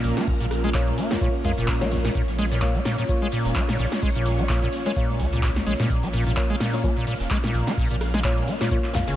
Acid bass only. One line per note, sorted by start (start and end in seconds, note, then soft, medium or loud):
0.00 0.19 A#2 medium
0.17 0.29 A#3 loud
0.27 0.35 A#1 medium
0.41 0.46 A#2 medium
0.64 0.70 G#3 loud
0.74 0.99 A#2 medium
0.98 1.12 A#3 loud
1.11 1.17 A#1 medium
1.21 1.28 A#2 medium
1.45 1.52 G#3 loud
1.58 1.83 A#2 medium
1.81 1.93 A#3 loud
1.92 1.99 A#1 medium
2.05 2.10 A#2 medium
2.15 2.22 A#2 medium
2.38 2.46 G#3 loud
2.52 2.76 A#2 medium
2.75 2.81 A#3 loud
2.85 2.96 A#2 medium
2.98 3.04 A#2 medium
3.22 3.28 G#3 medium
3.32 3.57 A#2 medium
3.56 3.63 A#3 loud
3.69 3.77 A#2 medium
3.79 3.86 A#2 medium
4.03 4.10 G#3 loud
4.16 4.41 A#2 medium
4.39 4.45 A#3 loud
4.50 4.60 A#2 medium
4.63 4.68 A#2 medium
4.86 4.92 G#3 loud
4.96 5.21 A#2 medium
5.20 5.27 A#3 loud
5.33 5.41 A#2 medium
5.43 5.50 A#2 medium
5.67 5.74 G#3 loud
5.80 6.05 A#2 medium
6.03 6.09 A#3 loud
6.13 6.24 A#2 medium
6.27 6.32 A#2 medium
6.50 6.56 G#3 loud
6.60 6.85 A#2 medium
6.84 6.91 A#3 loud
6.97 7.05 A#2 medium
7.07 7.14 A#2 medium
7.31 7.38 G#3 loud
7.44 7.69 A#2 medium
7.67 7.73 A#3 loud
7.77 7.88 A#2 medium
7.91 7.96 A#2 medium
8.14 8.20 G#3 loud
8.24 8.49 A#2 medium
8.48 8.55 A#3 loud
8.61 8.69 A#2 medium
8.71 8.78 A#2 medium
8.95 8.99 A#2 loud
9.08 9.16 C#3 medium